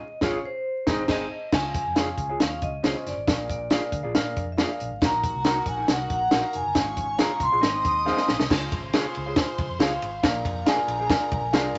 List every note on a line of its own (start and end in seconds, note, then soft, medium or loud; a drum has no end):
0.00 0.19 D#5 medium
0.21 0.37 G#1 medium
0.21 0.38 C#4 loud
0.21 0.37 F4 loud
0.21 0.38 F4 medium
0.21 0.37 G#4 loud
0.21 0.38 G#4 loud
0.21 0.37 C#5 loud
0.21 0.34 C#5 medium
0.21 0.37 F5 loud
0.21 0.38 F5 loud
0.21 kick loud
0.21 snare loud
0.45 1.28 C5 medium
0.86 1.03 G#1 loud
0.86 1.03 G#2 medium
0.86 1.03 C4 medium
0.86 1.02 D#4 loud
0.86 1.03 D#4 medium
0.86 1.02 G#4 medium
0.86 1.03 G#4 medium
0.86 1.02 C5 medium
0.86 1.03 D#5 medium
0.86 1.03 D#5 loud
0.86 kick loud
0.86 snare loud
1.08 1.24 G#1 loud
1.08 1.24 C4 medium
1.08 1.23 D#4 medium
1.08 1.24 D#4 loud
1.08 1.24 G#4 loud
1.08 1.24 G#4 medium
1.08 1.24 C5 medium
1.08 1.54 D#5 medium
1.08 1.24 D#5 loud
1.08 kick loud
1.08 snare loud
1.08 crash medium
1.52 1.79 C#2 medium
1.52 2.14 C#3 medium
1.52 1.82 C#4 medium
1.52 1.82 F4 medium
1.52 1.82 G#4 medium
1.52 1.81 F5 medium
1.52 2.36 G#5 loud
1.52 kick loud
1.52 snare loud
1.52 crash medium
1.74 kick loud
1.74 closed hi-hat medium
1.86 2.12 F2 medium
1.95 2.25 C#4 medium
1.95 2.07 F4 medium
1.95 2.25 F4 medium
1.95 2.25 G#4 medium
1.95 2.08 G#4 medium
1.95 2.08 C#5 medium
1.95 2.25 F5 medium
1.95 2.08 F5 medium
1.95 snare loud
1.95 closed hi-hat medium
2.18 2.35 C#2 medium
2.18 kick medium
2.18 closed hi-hat medium
2.29 2.39 F4 soft
2.29 2.39 G#4 medium
2.29 2.38 C#5 soft
2.29 2.38 F5 medium
2.40 2.58 D#2 medium
2.40 2.69 C#4 medium
2.40 2.69 F4 medium
2.40 2.69 G#4 medium
2.40 2.69 F5 medium
2.40 2.63 F5 loud
2.40 snare loud
2.40 closed hi-hat medium
2.62 2.80 C#2 medium
2.62 3.03 D#5 medium
2.62 kick loud
2.62 closed hi-hat medium
2.83 2.93 C#2 medium
2.83 3.12 C#4 medium
2.83 3.12 F4 medium
2.83 2.95 F4 medium
2.83 3.12 G#4 medium
2.83 2.95 G#4 medium
2.83 3.12 C5 medium
2.83 2.95 C#5 medium
2.83 2.96 F5 medium
2.83 snare loud
2.83 closed hi-hat medium
3.06 3.15 F#1 medium
3.06 3.49 D5 medium
3.06 snare soft
3.06 closed hi-hat medium
3.17 3.25 G#1 medium
3.27 3.79 A#1 loud
3.27 3.89 A#2 medium
3.27 3.56 D4 medium
3.27 3.56 G#4 medium
3.27 3.56 A#4 medium
3.27 3.56 F5 medium
3.27 kick loud
3.27 snare loud
3.27 closed hi-hat medium
3.50 3.90 D5 medium
3.50 kick loud
3.50 closed hi-hat medium
3.70 3.99 D4 medium
3.70 3.82 F4 medium
3.70 3.99 G#4 medium
3.70 3.82 G#4 medium
3.70 3.99 A#4 medium
3.70 3.82 D5 medium
3.70 4.00 F5 medium
3.70 3.83 F5 medium
3.70 snare loud
3.70 closed hi-hat loud
3.92 4.01 D2 medium
3.92 kick loud
3.92 closed hi-hat medium
4.03 4.17 A#1 medium
4.03 4.13 F4 soft
4.03 4.13 G#4 soft
4.03 4.12 D5 medium
4.03 4.12 F5 medium
4.15 4.33 A#2 loud
4.15 4.43 D4 medium
4.15 4.43 G#4 medium
4.15 4.43 A#4 medium
4.15 4.43 F5 loud
4.15 snare loud
4.15 closed hi-hat medium
4.36 4.63 F2 medium
4.36 kick loud
4.36 closed hi-hat medium
4.52 4.59 E5 medium
4.57 4.87 D4 medium
4.57 4.69 F4 medium
4.57 4.87 G#4 medium
4.57 4.69 G#4 medium
4.57 4.87 A#4 medium
4.57 4.69 D5 medium
4.57 4.87 F5 medium
4.57 4.70 F5 medium
4.57 5.04 F5 medium
4.57 snare loud
4.57 closed hi-hat medium
4.80 4.89 A#1 medium
4.80 closed hi-hat medium
4.91 5.00 G#1 medium
5.02 5.28 A#1 loud
5.02 5.63 A#2 medium
5.02 5.30 D#4 medium
5.02 5.30 F#4 medium
5.02 6.09 F#4 medium
5.02 5.30 A#4 medium
5.02 5.30 F#5 medium
5.02 6.08 F#5 medium
5.02 5.64 A#5 loud
5.02 kick loud
5.02 snare loud
5.02 closed hi-hat medium
5.23 kick loud
5.23 closed hi-hat medium
5.35 5.61 C2 medium
5.44 5.56 D#4 medium
5.44 5.74 D#4 medium
5.44 5.56 F#4 medium
5.44 5.74 F#4 medium
5.44 5.56 A#4 medium
5.44 5.74 A#4 medium
5.44 5.74 F#5 medium
5.44 5.57 F#5 medium
5.44 snare loud
5.44 closed hi-hat loud
5.66 5.84 A#1 medium
5.66 5.77 G#5 medium
5.66 kick loud
5.66 closed hi-hat medium
5.77 5.87 D#4 soft
5.77 5.86 F#4 medium
5.77 5.86 A#4 medium
5.77 5.86 F#5 medium
5.88 6.06 C2 medium
5.88 6.17 D#4 medium
5.88 6.17 F#4 medium
5.88 6.17 A#4 medium
5.88 6.17 F#5 medium
5.88 6.11 F#5 medium
5.88 snare loud
5.88 closed hi-hat medium
6.09 6.28 A#1 medium
6.09 6.74 A#4 medium
6.09 6.52 F#5 loud
6.09 6.74 A#5 medium
6.09 kick loud
6.09 closed hi-hat medium
6.31 6.41 A#1 medium
6.31 6.42 D#4 medium
6.31 6.61 D#4 medium
6.31 6.43 F#4 medium
6.31 6.61 F#4 medium
6.31 6.43 A#4 medium
6.31 6.61 A#4 medium
6.31 6.61 F5 medium
6.31 6.43 F#5 loud
6.31 snare loud
6.31 closed hi-hat medium
6.53 6.63 F1 medium
6.53 7.16 G#5 medium
6.53 closed hi-hat medium
6.66 6.74 F#1 medium
6.75 7.27 G#1 loud
6.75 7.37 G#2 medium
6.75 7.04 C#4 medium
6.75 7.04 F4 medium
6.75 7.04 G#4 medium
6.75 7.61 C#5 medium
6.75 7.04 F5 medium
6.75 7.61 C#6 medium
6.75 kick loud
6.75 snare loud
6.75 closed hi-hat loud
6.97 kick loud
6.97 closed hi-hat medium
7.18 7.47 C#4 medium
7.18 7.47 F4 medium
7.18 7.30 F4 medium
7.18 7.47 G#4 medium
7.18 7.30 G#4 medium
7.18 7.30 C#5 medium
7.18 7.47 F5 medium
7.18 7.31 F5 loud
7.18 7.40 A#5 loud
7.18 snare loud
7.18 closed hi-hat loud
7.40 7.49 C2 medium
7.40 8.25 C6 loud
7.40 kick medium
7.40 closed hi-hat medium
7.52 7.61 A#1 medium
7.52 7.61 F4 soft
7.52 7.61 G#4 soft
7.52 7.61 C#5 soft
7.52 7.60 F5 medium
7.61 7.81 G#1 loud
7.61 8.23 G#2 medium
7.61 7.90 C4 medium
7.61 7.90 D#4 medium
7.61 7.90 G#4 medium
7.61 7.90 D#5 medium
7.61 8.48 D#5 medium
7.61 8.48 D#6 medium
7.61 snare loud
7.61 closed hi-hat medium
7.85 8.11 D#2 medium
7.85 kick loud
7.85 closed hi-hat medium
8.05 8.34 C4 medium
8.05 8.34 D#4 medium
8.05 8.17 D#4 medium
8.05 8.34 G#4 medium
8.05 8.17 G#4 medium
8.05 8.18 C5 medium
8.05 8.18 D#5 loud
8.05 8.35 F5 loud
8.05 snare medium
8.17 snare medium
8.28 8.38 A#1 loud
8.28 snare loud
8.39 8.48 C2 medium
8.39 snare loud
8.49 8.68 C#2 loud
8.49 9.11 C#3 medium
8.49 8.78 F4 medium
8.49 8.78 G#4 medium
8.49 10.21 C5 medium
8.49 8.78 C#5 medium
8.49 10.21 C6 medium
8.49 kick loud
8.49 snare loud
8.49 crash loud
8.72 8.89 G#1 medium
8.72 kick loud
8.72 ride medium
8.93 9.22 F4 medium
8.93 9.05 F4 medium
8.93 9.22 G#4 medium
8.93 9.05 G#4 medium
8.93 9.22 C#5 loud
8.93 9.05 C#5 medium
8.93 9.05 F5 medium
8.93 snare loud
8.93 ride medium
9.05 muted fingered electric bass stroke soft
9.15 9.42 C#2 medium
9.15 ride medium
9.26 9.35 F4 soft
9.26 9.35 G#4 medium
9.26 9.35 C#5 soft
9.26 9.35 F5 medium
9.36 9.65 F4 medium
9.36 9.65 G#4 medium
9.36 9.65 C5 loud
9.36 kick loud
9.36 snare loud
9.36 ride medium
9.58 9.67 C#2 medium
9.58 kick loud
9.58 ride medium
9.68 9.77 F2 medium
9.79 9.97 C#2 loud
9.79 9.91 F4 medium
9.79 10.08 F4 medium
9.79 10.08 G#4 medium
9.79 9.91 G#4 medium
9.79 10.08 C#5 medium
9.79 9.91 C#5 medium
9.79 10.69 F5 medium
9.79 9.92 F5 medium
9.79 snare loud
9.79 ride medium
10.02 10.19 G#1 medium
10.02 ride medium
10.23 10.41 A#1 loud
10.23 10.84 A#2 medium
10.23 10.52 D4 medium
10.23 10.52 F4 medium
10.23 10.52 G#4 medium
10.23 10.52 A#4 medium
10.23 11.78 A#4 medium
10.23 10.52 F5 medium
10.23 11.78 A#5 medium
10.23 kick loud
10.23 snare loud
10.23 ride medium
10.45 10.62 F2 loud
10.45 kick loud
10.45 ride medium
10.66 10.95 D4 medium
10.66 10.78 D4 medium
10.66 10.95 F4 medium
10.66 10.95 G#4 medium
10.66 10.78 G#4 medium
10.66 10.95 A#4 medium
10.66 10.78 A#4 medium
10.66 10.95 F5 medium
10.66 10.79 F5 medium
10.66 11.72 G#5 loud
10.66 snare loud
10.66 ride medium
10.78 muted fingered electric bass stroke soft
10.88 11.14 A#1 medium
10.88 ride medium
10.99 11.09 D4 soft
10.99 11.09 G#4 soft
10.99 11.08 A#4 soft
10.99 11.08 F5 medium
11.10 11.39 D4 medium
11.10 11.39 F4 medium
11.10 11.39 G#4 medium
11.10 11.39 A#4 medium
11.10 11.39 F5 medium
11.10 kick loud
11.10 snare loud
11.10 ride medium
11.31 11.41 C2 loud
11.31 kick loud
11.31 ride medium
11.41 11.53 A#1 medium
11.53 11.70 C2 loud
11.53 11.64 D4 medium
11.53 11.78 D4 loud
11.53 11.78 F4 medium
11.53 11.78 G#4 loud
11.53 11.65 G#4 medium
11.53 11.78 A#4 loud
11.53 11.65 A#4 medium
11.53 11.78 F5 loud
11.53 11.65 F5 loud
11.53 snare loud
11.53 ride medium
11.74 11.78 G#1 medium